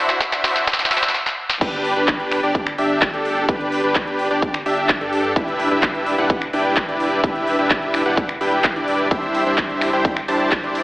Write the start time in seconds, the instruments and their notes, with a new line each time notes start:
Already playing: sub bass D2, supersaw synth D4 E4 F#4 C5 E5
0.09 snare
0.20 sub bass D2, supersaw synth D4 E4 F#4 C5 E5, kick, snare, closed hi-hat
0.32 snare, closed hi-hat
0.44 sub bass D2, supersaw synth D4 E4 F#4 C5 E5, snare, open hi-hat
0.56 snare, closed hi-hat
0.67 sub bass D2, supersaw synth D4 E4 F#4 C5 E5, kick, snare, closed hi-hat
0.73 snare
0.79 snare, closed hi-hat
0.85 snare
0.91 sub bass D2, supersaw synth D4 E4 F#4 C5 E5, snare, open hi-hat
0.97 snare
1.03 snare
1.08 snare
1.14 snare
1.26 snare
1.49 snare
1.61 sub bass G1, supersaw synth D4 G4 B4, kick, closed hi-hat, crash
1.73 closed hi-hat
1.85 open hi-hat
1.96 sub bass G1, supersaw synth D4 G4 B4, closed hi-hat
2.08 kick, clap, closed hi-hat
2.20 closed hi-hat
2.32 finger snap, open hi-hat
2.43 sub bass G1, supersaw synth D4 G4 D5, closed hi-hat
2.55 kick, closed hi-hat
2.67 finger snap, closed hi-hat
2.78 sub bass G1, supersaw synth D4 G4 E5, open hi-hat
3.02 kick, clap, closed hi-hat
3.14 sub bass G1, supersaw synth D4 G4 A4, closed hi-hat
3.25 open hi-hat
3.37 closed hi-hat
3.49 sub bass G1, supersaw synth G4 B4, kick, closed hi-hat
3.60 closed hi-hat
3.72 open hi-hat
3.84 sub bass G1, supersaw synth D4 G4 B4
3.95 kick, clap, closed hi-hat
4.07 closed hi-hat
4.19 open hi-hat
4.31 sub bass G1, supersaw synth D4 G4 D5, closed hi-hat
4.42 kick, closed hi-hat
4.54 finger snap, closed hi-hat
4.66 sub bass G1, supersaw synth D4 G4 E5, open hi-hat
4.78 closed hi-hat
4.89 kick, clap, closed hi-hat
5.01 sub bass G2, supersaw synth D4 G4 A4, closed hi-hat
5.13 open hi-hat
5.36 sub bass E1, supersaw synth D4 E4 G4 B4 E5, kick, closed hi-hat
5.48 closed hi-hat
5.60 open hi-hat
5.71 sub bass E1, supersaw synth D4 E4 G4 B4 E5, closed hi-hat
5.83 kick, clap, closed hi-hat
5.95 closed hi-hat
6.06 open hi-hat
6.18 sub bass E1, supersaw synth D4 E4 G4 B4 F#5, closed hi-hat
6.30 kick, closed hi-hat
6.42 finger snap, closed hi-hat
6.53 sub bass E1, supersaw synth D4 E4 G4 B4 G5, open hi-hat
6.65 closed hi-hat
6.77 kick, clap, closed hi-hat
6.88 sub bass E1, supersaw synth D4 E4 G4 B4 D5, closed hi-hat
7.00 open hi-hat
7.12 closed hi-hat
7.24 sub bass E1, supersaw synth D4 E4 E5, kick, closed hi-hat
7.35 closed hi-hat
7.47 open hi-hat
7.59 sub bass E1, supersaw synth D4 E4 G4 B4 E5, closed hi-hat
7.70 kick, clap, closed hi-hat
7.82 closed hi-hat
7.94 finger snap, open hi-hat
8.06 sub bass E1, supersaw synth D4 E4 G4 B4 F#5
8.17 kick, closed hi-hat
8.29 finger snap, closed hi-hat
8.41 sub bass E1, supersaw synth D4 E4 G4 B4 G5, open hi-hat
8.64 kick, clap, closed hi-hat
8.76 sub bass E1, supersaw synth D4 E4 G4 B4 D5, closed hi-hat
8.88 open hi-hat
9.11 sub bass C2, supersaw synth E4 G4 C5 E5, kick, closed hi-hat, ride
9.23 closed hi-hat
9.35 open hi-hat, ride
9.46 sub bass C2, supersaw synth D4 E4 G4 C5 E5, closed hi-hat
9.58 kick, clap, closed hi-hat, ride
9.70 closed hi-hat
9.81 finger snap, open hi-hat, ride
9.93 sub bass C2, supersaw synth D4 E4 G4 C5 G5, closed hi-hat
10.05 kick, closed hi-hat, ride
10.17 finger snap, closed hi-hat
10.28 sub bass C2, supersaw synth D4 E4 G4 C5 A5, open hi-hat, ride
10.40 closed hi-hat
10.52 kick, clap, closed hi-hat, ride
10.63 sub bass C2, supersaw synth D4 E4 G4 C5 D5, closed hi-hat
10.75 open hi-hat, ride